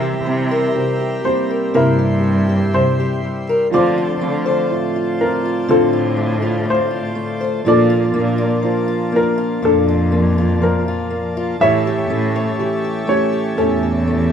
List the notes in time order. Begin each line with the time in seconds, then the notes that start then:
Already playing: C3 E3 G3 E4 G4 A#4 C5 E5 A#5
0.02 G4
0.24 C3 G3 C4
0.51 A#4
0.75 C3 G4
1.00 G4
1.24 G3 A#3 C4 G4 C5
1.51 A#4
1.74 G2 C3 A#3 E4 A#4 C6
1.99 G4
2.24 G3
2.49 G4
2.73 C3 C5
3.00 G4
3.24 G3
3.49 A#4
3.71 D3 F3 A3 C4 F4 C5 D5 A5
3.75 C5
3.98 F4
4.21 D3 A3 C4
4.46 C5
4.70 A2 F4
4.96 F4
5.21 C4 F4 A#4
5.46 F4
5.68 A2 D3 A3 C4 F4 A4
5.93 F4
6.17 A3
6.42 F4
6.65 A2
6.70 C5
6.91 F4
7.15 A3
7.41 C5
7.65 A#2 F3 A#3 D4 F4 A4 D5
7.90 F4
8.14 A#2 A#3 D4
8.38 F4
8.63 F3 F4
8.88 F4
9.12 A#3 D4 F4
9.16 A#4
9.38 F4
9.62 F2 A#2 D4 A4
9.88 F4
10.12 A#3
10.38 F4
10.62 F3 A#4
10.88 F4
11.11 A#3
11.37 F4
11.60 A2 E3 A3 C#4 G4 C#5 E5
11.87 G4
12.10 A2 A3 C#4
12.36 C#5
12.59 E3 G4
12.85 G4
13.07 A3 C#4 G4 C#5
13.33 G4
13.57 E2 A2 A3 C#4 A4
13.83 G4
14.08 A3